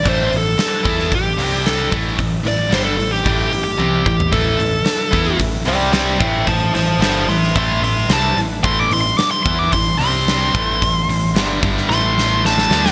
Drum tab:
HH |o-o-o-o-o-o-o-o-|o-o-o-o-o-o-----|o-o-o-o-o-o-o-o-|o-o-o-o-o-o-o-o-|
SD |----o--o----o---|--o-o--o--------|----o-------o---|--o-o--o----o---|
T1 |----------------|------------o---|----------------|----------------|
FT |----------------|---------------o|----------------|----------------|
BD |o-----o-o-----o-|o-------o-----o-|o-----o-o-----o-|o-------o-------|

HH |o-o-o-o-o-o-o-o-|o-o-o-o---------|
SD |----o-------o---|----o--oo-o-oooo|
T1 |----------------|----------------|
FT |----------------|----------------|
BD |o-----o-o-----o-|o-----o---------|